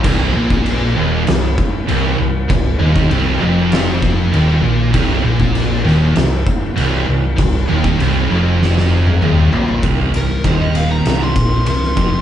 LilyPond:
<<
  \new Staff \with { instrumentName = "Lead electric guitar" } { \time 4/4 \key c \minor \tempo 4 = 98 r1 | r1 | r1 | r1 |
r8 bes'8 c''16 ees''16 f''16 bes''8 c'''8. c'''4 | }
  \new Staff \with { instrumentName = "Distorted electric guitar" } { \clef bass \time 4/4 \key c \minor c,8 bes,4 ees,8 c,8 r8 c,8 c,8 | c,8 ees,8 c,8 f,4. ees,8 bes,8 | c,8 bes,4 ees,8 c,8 r8 c,8 c,8 | c,8 ees,8 c,8 f,4. ees,8 bes,8 |
r1 | }
  \new Staff \with { instrumentName = "Distorted electric guitar" } { \clef bass \time 4/4 \key c \minor c,8 bes,4 ees,8 c,8 r8 c,8 c,8 | c,8 ees,8 c,8 f,4. ees,8 bes,8 | c,8 bes,4 ees,8 c,8 r8 c,8 c,8 | c,8 ees,8 c,8 f,4. ees,8 bes,8 |
c,8 c,8 ees,4 c,8 bes,8 c,8 f,8 | }
  \new Staff \with { instrumentName = "Distorted electric guitar" } { \clef bass \time 4/4 \key c \minor c,8 bes,4 ees,8 c,8 r8 c,8 c,8 | c,8 ees,8 c,8 f,4. ees,8 bes,8 | c,8 bes,4 ees,8 c,8 r8 c,8 c,8 | c,8 ees,8 c,8 f,4. ees,8 bes,8 |
c,8 c,8 ees,4 c,8 bes,8 c,8 f,8 | }
  \new Staff \with { instrumentName = "Fingered electric bass" } { \clef bass \time 4/4 \key c \minor c,,8 bes,,4 ees,,8 c,,8 r8 c,,8 c,,8 | c,,8 ees,,8 c,,8 f,,4. ees,,8 bes,,8 | c,,8 bes,,4 ees,,8 c,,8 r8 c,,8 c,,8 | c,,8 ees,,8 c,,8 f,,4. ees,,8 bes,,8 |
c,,8 c,,8 ees,,4 c,,8 bes,,8 c,,8 f,,8 | }
  \new DrumStaff \with { instrumentName = "Drums" } \drummode { \time 4/4 <cymc bd>8. bd16 cymc4 <cymc sn>8 bd8 cymc4 | <cymc bd>8. bd16 cymc4 <cymc sn>8 bd8 cymc4 | <cymc bd>8. bd16 cymc8 sn8 <cymc sn>8 bd8 cymc4 | <cymc bd>8. bd16 cymc4 sn16 sn8 tommh16 toml8 tomfh16 tomfh16 |
<bd cymr>8 cymr8 <bd cymr>8 cymr8 <cymr sn>8 <bd cymr>8 cymr16 sn16 <bd cymr>8 | }
>>